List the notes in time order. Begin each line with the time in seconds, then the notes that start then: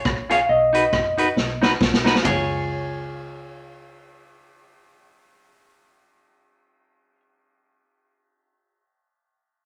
Already playing: C#5
0.05 A#1, kick, cross-stick
0.30 F4 G#4 C#5 F5, cross-stick, closed hi-hat
0.49 B1 D#5
0.73 D#4 F#4 B4, closed hi-hat
0.93 F#1, kick, cross-stick
1.18 D#4 F#4 B4, closed hi-hat
1.36 B1, snare
1.62 D#4 F#4 B4, snare
1.81 B1, kick, snare
1.93 snare
2.04 D#4 F#4 B4, snare
2.15 snare
2.23 C#2 F4 G#4 C#5, kick, floor tom, ride bell
2.27 C#5